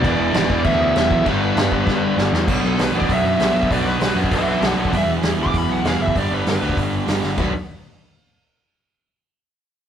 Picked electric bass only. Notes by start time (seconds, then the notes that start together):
0.04 E1
0.18 E1
0.33 G#1
0.49 E1
0.65 D2
0.79 D2
0.95 E1
1.11 B1
1.26 G1
1.56 G2
1.71 G1
1.87 G1
2.17 G1
2.32 E2
2.48 B1
2.63 B1
2.80 B1
2.94 A1
3.09 B1
3.23 F#2
3.39 B1
3.54 B1
3.70 B1
3.84 B1
4.00 B1
4.15 F#2
4.32 B1
4.61 B1
4.76 B1
4.93 E1
5.07 E1
5.22 E1
5.38 D2
5.54 E1
5.68 B1
5.84 E1
5.99 F#1
6.16 G1
6.31 G1
6.45 G1
6.62 D2
6.77 G1
7.08 G1
7.24 G1
7.38 B1